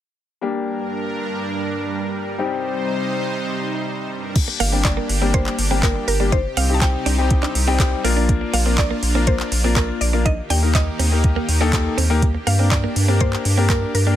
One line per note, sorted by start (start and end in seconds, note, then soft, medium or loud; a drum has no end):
0.41 2.37 G2 medium
0.41 2.35 G3 medium
0.41 4.32 G3 medium
0.41 2.35 A#3 medium
0.41 2.35 D4 medium
0.41 2.37 D4 medium
0.41 2.35 G4 medium
0.41 2.37 A#4 medium
2.38 4.09 C3 medium
2.38 4.07 G3 medium
2.38 4.07 C4 medium
2.38 4.09 D#4 medium
2.38 4.08 D#4 medium
2.38 4.08 G4 medium
2.38 4.09 C5 medium
4.11 4.35 G2 medium
4.11 4.34 D4 medium
4.11 4.35 A#4 medium
4.35 6.30 A#3 medium
4.35 6.30 D4 medium
4.35 8.01 G4 medium
4.35 kick loud
4.35 closed hi-hat medium
4.35 crash medium
4.48 muted clean electric guitar stroke soft
4.60 5.00 G1 loud
4.60 4.68 A#3 medium
4.60 4.71 F5 medium
4.60 open hi-hat medium
4.72 5.05 G3 medium
4.72 5.05 A#3 medium
4.72 4.80 C4 medium
4.72 5.05 D4 medium
4.72 5.05 G4 medium
4.85 5.35 D5 medium
4.85 kick loud
4.85 snare medium
4.85 clap loud
4.85 closed hi-hat medium
4.97 5.05 A#3 medium
5.09 5.49 G1 medium
5.09 muted clean electric guitar stroke soft
5.09 open hi-hat medium
5.21 5.54 G3 medium
5.21 5.54 A#3 medium
5.21 5.30 C4 medium
5.21 5.55 D4 medium
5.21 5.55 G4 medium
5.34 5.42 A#3 medium
5.34 5.85 C5 medium
5.34 kick loud
5.34 closed hi-hat medium
5.46 clap medium
5.59 5.98 G1 medium
5.59 muted clean electric guitar stroke soft
5.59 open hi-hat medium
5.71 6.04 G3 medium
5.71 6.04 A#3 medium
5.71 5.79 C4 medium
5.71 6.04 D4 medium
5.71 6.04 G4 medium
5.83 5.91 A#3 medium
5.83 6.07 A#4 medium
5.83 kick loud
5.83 snare medium
5.83 clap loud
5.83 closed hi-hat medium
5.96 muted clean electric guitar stroke soft
6.08 6.47 G1 medium
6.08 6.31 A#4 medium
6.08 open hi-hat medium
6.20 6.32 G3 medium
6.20 6.32 A#3 medium
6.20 6.28 D4 medium
6.20 6.32 D4 medium
6.20 6.32 G4 medium
6.32 8.03 C3 medium
6.32 8.03 C4 medium
6.32 6.40 D#4 medium
6.32 8.03 D#4 medium
6.32 6.58 C5 medium
6.32 kick loud
6.32 closed hi-hat medium
6.57 6.96 C2 medium
6.57 6.65 C4 medium
6.57 6.73 F5 loud
6.57 open hi-hat medium
6.69 7.02 G3 medium
6.69 7.02 C4 medium
6.69 7.02 D#4 medium
6.69 7.02 G4 medium
6.69 muted clean electric guitar stroke soft
6.74 6.81 A5 medium
6.82 7.27 G5 loud
6.82 kick loud
6.82 snare medium
6.82 clap loud
6.82 closed hi-hat medium
7.06 7.45 C2 medium
7.06 7.14 D4 medium
7.06 open hi-hat medium
7.18 7.51 G3 medium
7.18 7.51 C4 medium
7.18 7.51 D#4 medium
7.18 7.51 G4 medium
7.30 kick loud
7.30 closed hi-hat medium
7.43 7.51 D4 medium
7.43 clap medium
7.55 7.95 C2 medium
7.55 muted clean electric guitar stroke soft
7.55 open hi-hat medium
7.67 8.00 G3 loud
7.67 8.00 C4 loud
7.67 7.75 C4 medium
7.67 8.00 D#4 medium
7.67 8.01 G4 loud
7.80 muted clean electric guitar stroke soft
7.80 kick loud
7.80 snare loud
7.80 clap loud
7.80 closed hi-hat medium
8.04 8.44 A#1 medium
8.04 8.53 A#3 loud
8.04 10.23 A#3 medium
8.04 8.12 A#3 medium
8.04 10.23 D4 medium
8.04 8.54 D4 medium
8.04 10.23 F4 medium
8.04 8.54 F4 medium
8.04 8.54 A#4 loud
8.04 open hi-hat medium
8.17 8.25 D4 medium
8.29 kick loud
8.29 closed hi-hat medium
8.41 muted clean electric guitar stroke soft
8.53 8.93 A#1 loud
8.53 8.61 A#3 medium
8.53 8.79 F5 medium
8.53 open hi-hat medium
8.66 8.99 A#3 medium
8.66 8.74 C4 medium
8.66 8.99 D4 medium
8.66 8.99 F4 medium
8.66 8.99 A#4 medium
8.78 9.29 D5 medium
8.78 kick loud
8.78 snare medium
8.78 clap loud
8.78 closed hi-hat medium
8.91 8.98 A#3 medium
9.03 9.42 A#1 medium
9.03 muted clean electric guitar stroke soft
9.03 open hi-hat medium
9.15 9.48 A#3 medium
9.15 9.23 C4 medium
9.15 9.48 D4 medium
9.15 9.48 F4 medium
9.15 9.48 A#4 medium
9.27 9.35 A#3 medium
9.27 9.78 C5 medium
9.27 kick loud
9.27 closed hi-hat medium
9.40 clap medium
9.52 9.91 A#1 medium
9.52 muted clean electric guitar stroke soft
9.52 open hi-hat medium
9.64 9.97 A#3 medium
9.64 9.72 C4 medium
9.64 9.97 D4 medium
9.64 9.97 F4 medium
9.64 9.97 A#4 loud
9.76 9.84 A#3 medium
9.76 10.02 A#4 medium
9.76 kick loud
9.76 snare medium
9.76 clap loud
9.76 closed hi-hat medium
9.89 muted clean electric guitar stroke soft
10.01 10.40 A#1 medium
10.01 10.26 D5 medium
10.01 open hi-hat medium
10.13 10.26 A#3 medium
10.13 10.21 D4 medium
10.13 10.26 D4 medium
10.13 10.26 F4 medium
10.13 10.26 A#4 medium
10.26 12.20 D#3 medium
10.26 12.20 A#3 medium
10.26 10.33 D#4 medium
10.26 12.20 D#4 medium
10.26 14.16 G4 medium
10.26 10.51 D#5 loud
10.26 kick loud
10.26 closed hi-hat medium
10.50 10.90 D#2 medium
10.50 10.58 D4 medium
10.50 10.76 G5 loud
10.50 open hi-hat medium
10.62 10.95 A#3 medium
10.62 10.95 D#4 medium
10.62 10.96 G4 medium
10.62 10.96 A#4 medium
10.62 muted clean electric guitar stroke soft
10.75 11.21 D#5 medium
10.75 kick loud
10.75 snare medium
10.75 clap loud
10.75 closed hi-hat medium
10.99 11.39 D#2 medium
10.99 11.07 C4 medium
10.99 open hi-hat medium
11.12 11.45 A#3 medium
11.12 11.45 D#4 medium
11.12 11.45 G4 medium
11.12 11.45 A#4 medium
11.24 kick loud
11.24 closed hi-hat medium
11.36 11.44 A#3 medium
11.49 11.88 D#2 medium
11.49 muted clean electric guitar stroke soft
11.49 open hi-hat medium
11.61 11.94 A#3 loud
11.61 11.69 D4 medium
11.61 11.94 D#4 medium
11.61 11.94 G4 medium
11.61 11.94 A4 loud
11.73 muted clean electric guitar stroke soft
11.73 kick loud
11.73 snare loud
11.73 clap loud
11.73 closed hi-hat medium
11.98 12.37 D#2 medium
11.98 12.06 C4 medium
11.98 open hi-hat medium
12.10 12.22 A#3 loud
12.10 12.18 A#3 medium
12.10 12.22 D#4 medium
12.10 12.22 G4 medium
12.10 12.23 A#4 loud
12.22 14.16 A#3 medium
12.22 14.16 D4 medium
12.22 kick loud
12.22 closed hi-hat medium
12.35 muted clean electric guitar stroke soft
12.47 12.86 G2 medium
12.47 12.55 A#3 medium
12.47 12.72 F5 medium
12.47 open hi-hat medium
12.59 12.92 A#3 medium
12.59 12.67 C4 medium
12.59 12.92 D4 medium
12.59 12.92 G4 medium
12.59 12.92 A#4 medium
12.71 13.22 D5 medium
12.71 kick loud
12.71 snare medium
12.71 clap loud
12.71 closed hi-hat medium
12.84 12.92 A#3 medium
12.96 13.36 G2 medium
12.96 muted clean electric guitar stroke soft
12.96 open hi-hat medium
13.08 13.41 A#3 medium
13.08 13.16 C4 medium
13.08 13.41 D4 medium
13.08 13.41 G4 medium
13.08 13.41 A#4 medium
13.20 13.29 A#3 medium
13.20 13.71 C5 medium
13.20 kick loud
13.20 closed hi-hat medium
13.33 clap medium
13.45 13.85 G2 medium
13.45 muted clean electric guitar stroke soft
13.45 open hi-hat medium
13.57 13.90 A#3 medium
13.57 13.66 C4 medium
13.57 13.90 D4 medium
13.57 13.91 G4 medium
13.57 13.91 A#4 loud
13.70 13.78 A#3 medium
13.70 13.93 A#4 medium
13.70 kick loud
13.70 snare loud
13.70 clap loud
13.70 closed hi-hat medium
13.82 muted clean electric guitar stroke soft
13.94 14.16 G2 medium
13.94 14.16 A#4 medium
13.94 open hi-hat medium
14.07 14.16 A#3 medium
14.07 14.16 D4 medium
14.07 14.15 D4 medium
14.07 14.16 G4 medium
14.07 14.16 A#4 medium